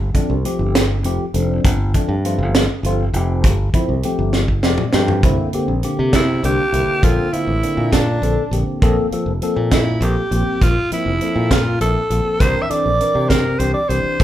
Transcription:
Already playing: G1
0.14 F3 A3 C4 D4, kick, closed hi-hat
0.30 C2
0.45 F3 A3 C4 G4, closed hi-hat
0.59 G1
0.75 snare, closed hi-hat
1.04 F1 F3 A3 C4 G4, closed hi-hat
1.34 F1 F3 A3 C4 D4, closed hi-hat
1.64 G1, kick, closed hi-hat
1.94 F3 A3 C4 D4, kick, closed hi-hat
2.09 G2
2.25 F3 A3 C4 F4, closed hi-hat
2.38 G1
2.55 snare, closed hi-hat
2.83 G1 F3 A3 C4 F4, closed hi-hat
3.13 F1 F3 A3 C4 G4, closed hi-hat
3.44 G1, kick, closed hi-hat
3.74 F3 A3 C4 E4, kick, closed hi-hat
3.89 C2
4.03 F3 A3 C4 G4, closed hi-hat
4.19 G1
4.33 snare
4.48 kick
4.63 F1 F3 A3 C4 G4 D5, snare
4.78 mid tom
4.93 G2 F3 A3 C4 G4 G5, snare
5.08 floor tom
5.23 C2 D3 A#3 C4 E4, kick, closed hi-hat
5.53 D3 A#3 C4 G4, muted fingered electric bass stroke, closed hi-hat
5.68 A#1
5.83 D3 A#3 C4 G4, closed hi-hat
5.99 C3
6.13 E4, kick, snare, closed hi-hat
6.43 C2 D3 A#3 C4 D4 G4, closed hi-hat
6.72 C2 D3 A#3 C4 E4, closed hi-hat
6.88 muted fingered electric bass stroke
7.03 A#1 D3 A#3 C4 F4 A4, kick, closed hi-hat
7.32 D3 A#3 C4 E4 F4, muted fingered electric bass stroke, closed hi-hat
7.47 A1
7.62 D3 A#3 C4 D4, closed hi-hat
7.77 A#2
7.92 D4, kick, snare, closed hi-hat
8.21 A#1 D3 A#3 C4 A4, closed hi-hat
8.51 A#1 D3 A#3 C4 G4, closed hi-hat
8.67 muted fingered electric bass stroke
8.82 A#1 F3 A#3 C4 A4, kick, closed hi-hat
9.11 F3 A#3 C4 A4, muted fingered electric bass stroke, closed hi-hat
9.26 F1
9.42 F3 A#3 C4 A4, closed hi-hat
9.56 A#2
9.71 E4, kick, snare, closed hi-hat
10.01 A#1 F3 A#3 C4 G4 A4, closed hi-hat
10.31 A#1 F3 A#3 C4 G4, closed hi-hat
10.61 A#1 F4, kick, closed hi-hat
10.91 F3 A#3 C4 E4, muted fingered electric bass stroke, closed hi-hat
11.06 F1
11.21 F3 A#3 C4 A4, closed hi-hat
11.36 A#2
11.51 F4, kick, snare, closed hi-hat
11.80 A#1 F3 A#3 C4 E4 A4, closed hi-hat
12.10 A#1 F3 A#3 C4 A4, closed hi-hat
12.25 muted fingered electric bass stroke
12.40 C2 E3 C4 D4 A#4 C5, kick, closed hi-hat
12.62 E5
12.69 E3 C4 D4 A4 D5, muted fingered electric bass stroke, closed hi-hat
12.86 A#1
13.00 E3 C4 D4 A#4, closed hi-hat
13.15 C3
13.29 A#4, kick, snare, closed hi-hat
13.59 C2 E3 C4 D4 G4 C5, closed hi-hat
13.74 D5
13.89 C2 E3 C4 D4 G4 C5, closed hi-hat
14.04 muted fingered electric bass stroke
14.19 A#1 D3 A#3 C4 A4, kick, closed hi-hat

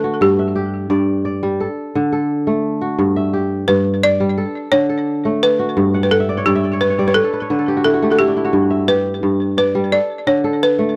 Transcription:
Already playing: D3 A3 A4
0.04 F#4
0.21 G2 G4
0.39 E5
0.56 G4
0.90 G2 D5
1.25 D5
1.43 G3
1.60 A4
1.95 D3
2.12 A4
2.47 A3
2.81 F#4
2.99 G2
3.16 E5
3.33 G4
3.68 G2 B4
4.03 D5
4.20 G3
4.37 A4
4.72 D3 C#5
4.89 A4
5.25 A3
5.43 B4
5.59 F#4
5.77 G2
5.94 F#5
6.03 B4 G5
6.11 A4 F#5
6.20 E5
6.29 D5
6.38 C#5
6.46 G2 G4 D5
6.55 E5
6.64 D5
6.73 C#5
6.81 B4
6.90 C#5
6.99 G3 D5
7.08 B4 C#5
7.14 A4 B4
7.24 A4
7.33 B4
7.42 C#5
7.50 D3 B4
7.59 A4
7.68 G4
7.77 F#4
7.84 E4 A4
7.93 F#4
8.02 A3 G4
8.11 F#4 A4
8.19 E4 G4
8.28 D4
8.37 E4
8.45 F#4
8.53 G2
8.70 E5
8.88 G4 B4
9.23 G2
9.57 B4 D5
9.75 G3
9.92 A4 D5
10.27 D3 C#5
10.44 A4
10.63 B4
10.79 A3

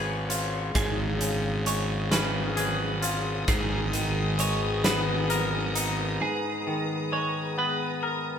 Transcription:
Already playing: G#1 G#2 C#3 G#3 C#4 G#4 B4 C#5 F5 C#6
0.30 F4, closed hi-hat
0.75 G#1 G#2 G#4 D#6, kick, closed hi-hat
1.21 C#3, closed hi-hat
1.66 G#3 C#5, closed hi-hat
2.11 C#4 B4, snare, closed hi-hat
2.57 G#4 B4, closed hi-hat
3.02 F4, closed hi-hat
3.48 G#1 G#2 B3 G#4 A#5, kick, closed hi-hat
3.93 D#3, closed hi-hat
4.39 G#3 C#5, closed hi-hat
4.84 B3 B4, snare, closed hi-hat
5.30 A#4, closed hi-hat
5.75 D#4, closed hi-hat
6.20 G#2 G#4
6.67 D#3
7.12 G#3 C#5
7.58 B3 B4
8.03 A#4

